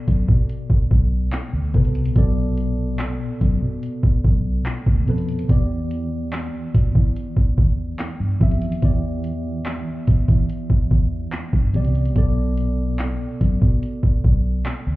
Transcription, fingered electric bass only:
0.08 F#2
0.28 B2
0.91 B1
1.53 D2
1.74 C2
2.16 B1
3.41 F#2
3.62 B2
4.24 B1
4.86 D2
5.08 F2
5.49 E2
6.74 B2
6.95 E3
7.58 E2
8.20 G2
8.41 F2
8.83 E2
10.08 B2
10.28 E3
10.91 E2
11.53 G2
11.74 C2
12.16 B1
13.41 F#2
13.62 B2
14.24 B1
14.87 D2

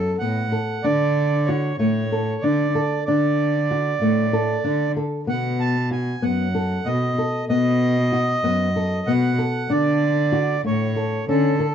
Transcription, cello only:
Already playing: F#2
0.21 A2
0.85 D3
1.81 A2
2.44 D3
3.08 D3
4.03 A2
4.66 D3
5.28 B2
6.24 F#2
6.87 B2
7.50 B2
8.44 F#2
9.08 B2
9.71 D3
10.67 A2
11.29 D3

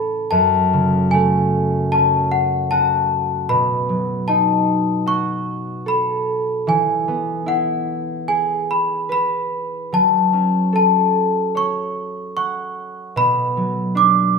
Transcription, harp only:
Already playing: A2 E3 C#4 E4 A4
0.32 F#2
0.73 C#3
1.13 A3
1.93 C#4
2.72 F#4
3.49 B2
3.89 F#3
4.28 D#4
5.06 F#4
5.86 A4
6.67 E3
7.08 B3
7.46 E4
8.28 G#4
9.09 B4
9.92 F#3
10.33 C#4
10.73 A4
11.55 C#5
12.37 F#5
13.16 B2
13.57 F#3
13.95 D4

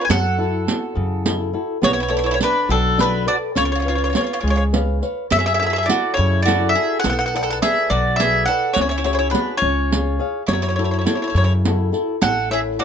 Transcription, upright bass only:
0.10 F#2
0.97 F#2
1.83 B1
2.69 B1
3.56 C#2
4.43 C#2
5.32 F#2
6.19 F#2
7.05 B1
7.90 B1
8.77 C#2
9.62 C#2
10.48 F#2
11.35 F#2
12.22 A1

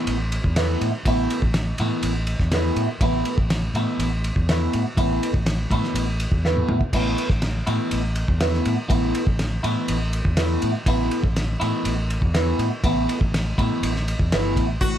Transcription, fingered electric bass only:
0.07 A1
0.44 E2
0.81 A2
1.05 A1
1.42 A1
1.80 A2
2.03 A1
2.39 E2
2.76 A2
3.01 A1
3.38 A1
3.74 A2
3.99 A1
4.36 E2
4.74 A2
4.97 A1
5.33 A1
5.70 A2
5.94 A1
6.32 E2
6.69 A2
6.93 A1
7.30 A1
7.68 A2
7.92 A1
8.29 E2
8.66 A2
8.90 A1
9.27 A1
9.64 A2
9.89 A1
10.25 E2
10.63 A2
10.86 A1
11.23 A1
11.62 A2
11.85 A1
12.21 E2
12.59 A2
12.84 A1
13.21 A1
13.59 A2
13.82 A1
14.19 E2
14.32 G1
14.56 A1
14.81 A1

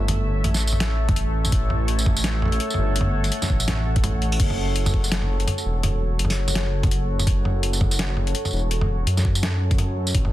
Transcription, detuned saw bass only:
Already playing: G1
0.44 A1
1.52 A1
2.78 G1
3.50 A1
3.85 A1
4.40 F#1
5.65 E1
6.19 F#1
7.27 F#1
8.53 E1
9.07 F#2
9.60 F#2
10.14 A1

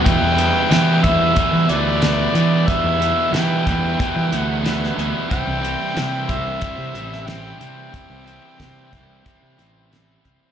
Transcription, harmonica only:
0.05 G5
1.03 E5
1.70 D5
2.67 E5
3.33 G5
4.36 F#5
5.32 G5
6.30 E5
7.27 G5
7.60 G5

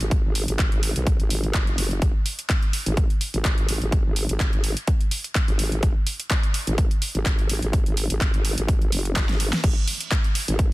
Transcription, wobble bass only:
0.01 G#1
0.24 G#1
0.48 G#1
0.72 G#1
0.96 B1
1.20 G#1
1.54 F#1
2.02 G#1
2.86 G#1
3.34 G#1
3.69 G#1
3.82 G#1
4.05 G#1
4.29 G#1
4.53 G#1
5.48 G#1
5.83 G#1
6.67 G#1
7.15 G#1
7.49 G#1
7.63 G#1
7.86 G#1
8.10 G#1
8.34 G#1
8.58 G#1
8.92 F#1
9.29 G#1
9.64 G#1
10.48 G#1

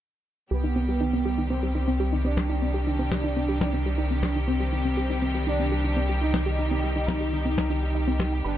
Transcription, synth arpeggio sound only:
0.51 G4
0.64 D#4
0.76 C4
0.89 G4
1.01 D#4
1.13 C4
1.25 G4
1.38 D#4
1.50 C4
1.63 G4
1.75 D#4
1.88 C4
2.00 G4
2.12 D#4
2.25 C4
2.37 G4
2.49 D#4
2.62 C4
2.74 G4
2.87 D#4
2.99 C4
3.12 G4
3.24 D#4
3.36 C4
3.49 G4
3.61 D#4
3.73 C4
3.86 G4
3.98 D#4
4.11 C4
4.23 G4
4.36 D#4
4.48 C4
4.60 G4
4.73 D#4
4.85 C4
4.97 G4
5.10 D#4
5.22 C4
5.35 G4
5.47 D#4
5.60 C4
5.72 G4
5.84 D#4
5.96 C4
6.09 G4
6.21 D#4
6.34 C4
6.46 G4
6.59 D#4
6.71 C4
6.84 G4
6.96 D#4
7.08 C4
7.21 G4
7.33 D#4
7.45 C4
7.58 G4
7.70 D#4
7.83 G5
7.95 D#5
8.07 C4
8.20 G4
8.32 G5
8.44 B5

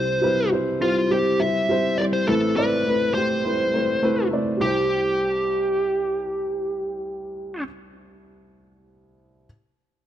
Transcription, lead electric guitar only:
Already playing: C5
0.82 F4
1.11 G4
1.40 E5
1.98 D5
2.13 C5
2.27 A4
2.56 B4
3.14 C5
4.61 G4

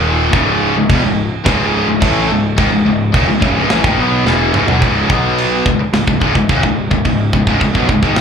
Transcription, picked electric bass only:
Already playing: D#1
0.33 C#1
0.76 C#1
0.89 E1
1.04 C#1
1.46 C#1
1.89 C#1
2.02 A1
2.30 C#1
2.58 G#1
2.72 C#1
2.86 C#1
3.14 D#1
3.28 C#1
3.41 F#1
3.56 C#1
3.70 A1
3.84 G#1
3.98 B1
4.25 E1
4.53 C#1
4.67 B1
4.82 C#1
5.10 B1
5.66 C#1
5.80 muted picked electric bass stroke
5.93 C#1
6.07 C#1
6.21 C#1
6.34 C#1
6.49 D#1
6.63 C#1
6.91 C#1
7.05 C#1
7.33 C#1
7.47 C#1
7.60 C#1
7.75 B1
7.89 C#1
8.02 G#1
8.16 C#1

